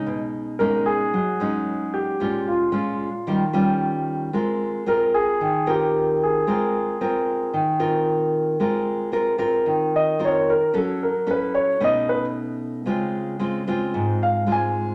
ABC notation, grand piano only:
X:1
M:4/4
L:1/8
Q:1/4=112
K:Ab
V:1 name="Grand piano"
z2 B ^G4 =G- | G F4 z3 | z2 B A2 G2 A- | A6 z2 |
z4 z e d B | =A B _c d ^d =B z2 | z4 z f a2 |]